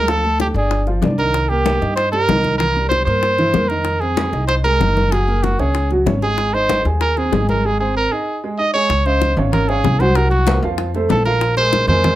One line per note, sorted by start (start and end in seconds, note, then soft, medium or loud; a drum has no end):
0.00 0.50 D2 medium
0.00 0.11 A#4 loud
0.08 0.21 F3 medium
0.08 0.21 F4 medium
0.08 0.40 A4 medium
0.08 high bongo medium
0.08 high conga soft
0.24 0.50 A3 medium
0.24 0.50 A4 medium
0.24 high conga soft
0.40 0.48 G4 medium
0.40 high bongo medium
0.40 high conga medium
0.54 0.99 G1 medium
0.54 0.81 D4 medium
0.54 0.86 G#4 medium
0.54 0.82 D5 medium
0.54 high bongo soft
0.54 high conga soft
0.71 high bongo medium
0.71 high conga soft
0.87 1.00 F3 medium
0.87 1.00 F4 medium
0.87 high bongo soft
0.87 high conga soft
1.02 1.75 C2 medium
1.02 1.16 D4 medium
1.02 1.16 D5 medium
1.02 high bongo soft
1.02 low bongo medium
1.02 high conga medium
1.19 1.45 D#3 medium
1.19 1.45 D#4 medium
1.19 1.51 A#4 loud
1.19 high bongo soft
1.19 high conga soft
1.34 high bongo medium
1.34 high conga soft
1.49 1.76 A#3 medium
1.49 1.95 G4 medium
1.49 1.76 A#4 medium
1.49 high conga soft
1.66 high bongo medium
1.66 high conga medium
1.82 2.26 G2 medium
1.82 2.07 D#4 medium
1.82 2.08 D#5 medium
1.82 high bongo soft
1.82 high conga soft
1.96 2.11 C5 medium
1.96 high bongo medium
1.96 high conga soft
2.12 2.26 G3 medium
2.12 2.26 G4 medium
2.12 2.56 A#4 loud
2.12 high bongo soft
2.12 high conga soft
2.29 3.02 C2 medium
2.29 2.55 D#3 medium
2.29 2.55 D#4 medium
2.29 high bongo soft
2.29 low bongo medium
2.29 high conga medium
2.44 high bongo soft
2.44 high conga medium
2.58 2.73 E3 medium
2.58 2.73 E4 medium
2.58 2.88 A#4 medium
2.58 high bongo medium
2.58 high conga soft
2.76 3.02 G3 medium
2.76 3.02 G4 medium
2.76 high conga soft
2.89 3.05 C5 medium
2.89 high bongo medium
2.89 high conga medium
3.06 3.51 G2 medium
3.06 3.34 A#3 medium
3.06 3.34 A#4 medium
3.06 3.70 C5 medium
3.06 high bongo soft
3.06 high conga soft
3.23 high bongo medium
3.23 high conga soft
3.39 3.52 E3 medium
3.39 3.52 E4 medium
3.39 high bongo soft
3.39 high conga soft
3.54 4.28 F2 medium
3.54 3.67 A#3 medium
3.54 3.67 A#4 medium
3.54 high bongo soft
3.54 low bongo medium
3.54 high conga medium
3.69 3.96 D#3 medium
3.69 3.96 D#4 medium
3.69 4.02 A#4 medium
3.69 high bongo soft
3.69 high conga soft
3.85 high bongo medium
3.85 high conga soft
4.00 4.28 C4 medium
4.00 4.47 G#4 medium
4.00 4.28 C5 medium
4.00 high conga soft
4.17 high bongo medium
4.17 high conga medium
4.33 4.77 C2 medium
4.33 4.59 D#4 medium
4.33 4.59 D#5 medium
4.33 high bongo soft
4.33 high conga soft
4.48 4.55 C5 medium
4.48 high bongo medium
4.48 high conga soft
4.64 4.78 G#3 medium
4.64 4.78 G#4 medium
4.64 5.13 A#4 medium
4.64 high bongo soft
4.64 high conga soft
4.80 5.54 F#1 medium
4.80 5.06 D#3 medium
4.80 5.06 D#4 medium
4.80 high bongo soft
4.80 low bongo medium
4.80 high conga medium
4.97 high bongo soft
4.97 high conga medium
5.12 5.25 F#3 medium
5.12 5.25 F#4 medium
5.12 5.44 G#4 medium
5.12 high bongo medium
5.12 high conga soft
5.28 5.54 A#3 medium
5.28 5.54 A#4 medium
5.28 high conga soft
5.43 5.61 F#4 medium
5.43 high bongo medium
5.43 high conga medium
5.59 6.03 C#2 medium
5.59 5.86 C#4 medium
5.59 5.91 G#4 medium
5.59 5.86 C#5 medium
5.59 high bongo soft
5.59 high conga soft
5.75 high bongo medium
5.75 high conga soft
5.91 6.04 F#3 medium
5.91 6.05 F#4 medium
5.91 high bongo soft
5.91 high conga soft
6.06 6.80 G#1 medium
6.06 6.20 C#4 medium
6.06 6.20 C#5 medium
6.06 high bongo soft
6.06 low bongo medium
6.06 high conga medium
6.22 6.48 G#3 medium
6.22 6.55 G#4 loud
6.22 6.49 G#4 medium
6.22 high bongo soft
6.22 high conga soft
6.38 high bongo medium
6.38 high conga soft
6.54 6.80 D#4 medium
6.54 6.86 C5 loud
6.54 6.80 D#5 medium
6.54 high conga soft
6.69 high bongo medium
6.69 high conga medium
6.85 7.29 D#2 medium
6.85 7.12 G#4 medium
6.85 7.12 G#5 medium
6.85 high bongo soft
6.85 high conga soft
7.01 7.19 A#4 medium
7.01 high bongo medium
7.01 high conga soft
7.17 7.30 C4 medium
7.17 7.48 G#4 medium
7.17 7.31 C5 medium
7.17 high bongo soft
7.17 high conga soft
7.32 8.06 G#1 medium
7.32 7.59 G#3 medium
7.32 7.59 G#4 medium
7.32 high bongo soft
7.32 low bongo medium
7.32 high conga medium
7.49 7.67 A#4 medium
7.49 high bongo soft
7.49 high conga medium
7.65 7.78 G#3 medium
7.65 7.78 G#4 medium
7.65 7.80 G#4 medium
7.80 8.06 C4 medium
7.80 7.95 G#4 medium
7.80 8.07 C5 medium
7.97 8.13 A#4 medium
8.12 8.38 D#4 medium
8.12 8.43 G#4 medium
8.12 8.38 D#5 medium
8.44 8.56 G#3 medium
8.44 8.57 G#4 medium
8.58 8.72 D#4 medium
8.58 8.73 D#5 medium
8.58 8.72 D#5 medium
8.74 8.87 G#3 medium
8.74 8.88 G#4 medium
8.74 9.08 C#5 loud
8.90 9.34 C#2 medium
8.90 high bongo medium
8.90 high conga soft
9.06 9.32 C#4 medium
9.06 9.37 C5 medium
9.06 9.32 D#5 medium
9.06 9.32 F5 medium
9.06 high bongo soft
9.06 high conga soft
9.22 high bongo medium
9.22 high conga medium
9.37 9.81 G#1 medium
9.37 9.64 C#4 medium
9.37 9.64 C#5 medium
9.37 9.64 F5 medium
9.37 low conga medium
9.53 9.70 A#4 medium
9.53 high bongo medium
9.53 high conga soft
9.53 low conga medium
9.69 9.95 C#4 medium
9.69 10.02 G#4 medium
9.69 9.95 C#5 medium
9.69 9.96 F5 medium
9.69 high bongo soft
9.69 high conga soft
9.84 10.57 C2 loud
9.84 high bongo soft
9.84 low bongo medium
9.84 high conga soft
10.00 10.14 F#3 medium
10.00 10.14 F#4 medium
10.00 10.17 C5 medium
10.00 10.14 F#5 medium
10.00 high bongo soft
10.00 high conga medium
10.16 10.42 F#3 medium
10.16 10.42 F#4 medium
10.16 10.30 A#4 medium
10.16 10.43 F#5 medium
10.16 high bongo medium
10.30 10.60 F#4 medium
10.30 high bongo soft
10.30 high conga soft
10.47 10.61 A#3 medium
10.47 10.61 A#4 medium
10.47 10.61 C5 medium
10.47 high bongo medium
10.47 high conga loud
10.62 11.07 F2 medium
10.62 10.89 F3 medium
10.62 10.89 F4 medium
10.62 10.89 F5 medium
10.62 high conga soft
10.78 high bongo medium
10.78 high conga soft
10.94 11.21 A3 medium
10.94 11.21 A4 medium
10.94 11.21 C5 medium
10.94 high bongo soft
10.94 high conga soft
11.09 11.83 A#1 medium
11.09 11.25 A4 medium
11.09 high bongo soft
11.09 low bongo medium
11.09 high conga medium
11.26 11.52 F3 medium
11.26 11.52 F4 medium
11.26 11.55 A#4 medium
11.26 11.52 F5 medium
11.26 high bongo soft
11.26 high conga soft
11.41 high bongo medium
11.41 high conga soft
11.57 11.83 G#3 medium
11.57 11.83 G#4 medium
11.57 11.83 A#4 medium
11.57 11.86 C5 loud
11.57 high bongo soft
11.57 high conga soft
11.73 high bongo medium
11.73 high conga medium
11.88 12.15 F2 medium
11.88 12.15 G#3 medium
11.88 12.15 G#4 medium
11.88 12.15 A#4 medium
11.88 12.15 C5 loud
11.88 low conga medium
12.04 high bongo medium
12.04 high conga soft
12.04 low conga medium